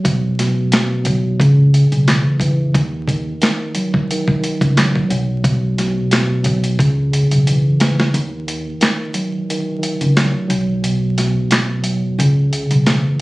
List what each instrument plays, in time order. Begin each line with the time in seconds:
Already playing: tine electric piano F#3
0.04 tine electric piano B2, kick, closed hi-hat
0.39 tine electric piano B2, snare, closed hi-hat
0.72 tine electric piano B2, snare, clap, closed hi-hat
1.04 tine electric piano F#3, kick, closed hi-hat
1.40 upright bass C#2, tine electric piano C#3, kick, closed hi-hat
1.73 tine electric piano C#3, closed hi-hat
1.92 upright bass B1, closed hi-hat
2.08 tine electric piano E3, snare, clap, closed hi-hat
2.40 tine electric piano E3, kick, closed hi-hat
2.75 upright bass D#2, tine electric piano D#3, kick, closed hi-hat
3.08 tine electric piano D#3, kick, closed hi-hat
3.42 tine electric piano D#3, snare, clap, closed hi-hat
3.75 tine electric piano F#3, closed hi-hat
3.94 kick
4.11 tine electric piano D#3, closed hi-hat
4.28 kick
4.40 tine electric piano D#3
4.44 closed hi-hat
4.61 upright bass C#2, kick, closed hi-hat
4.76 tine electric piano F#3, snare, clap, closed hi-hat
4.96 kick
5.09 upright bass B1, tine electric piano F#3, closed hi-hat
5.43 tine electric piano B2, kick, closed hi-hat
5.78 tine electric piano B2, snare, closed hi-hat
6.11 tine electric piano B2, snare, clap, closed hi-hat
6.43 tine electric piano F#3, kick, closed hi-hat
6.64 closed hi-hat
6.79 upright bass C#2, tine electric piano C#3, kick, closed hi-hat
7.12 tine electric piano C#3, closed hi-hat
7.31 upright bass B1, closed hi-hat
7.47 tine electric piano E3, closed hi-hat
7.80 tine electric piano E3, snare, closed hi-hat
8.00 snare
8.14 upright bass D#2, tine electric piano D#3, closed hi-hat
8.47 tine electric piano D#3, closed hi-hat
8.81 tine electric piano D#3, snare, clap, closed hi-hat
9.14 tine electric piano F#3, closed hi-hat
9.50 tine electric piano D#3, closed hi-hat
9.79 tine electric piano D#3
9.83 closed hi-hat
10.01 upright bass C#2, closed hi-hat
10.16 tine electric piano F#3, snare, clap, closed hi-hat
10.48 upright bass B1, tine electric piano F#3, closed hi-hat
10.82 tine electric piano B2, closed hi-hat
11.18 tine electric piano B2, snare, closed hi-hat
11.51 tine electric piano B2, snare, clap, closed hi-hat
11.82 tine electric piano F#3, closed hi-hat
12.19 upright bass C#2, tine electric piano C#3, closed hi-hat
12.51 tine electric piano C#3, closed hi-hat
12.71 upright bass B1, closed hi-hat
12.86 tine electric piano E3, snare, clap, closed hi-hat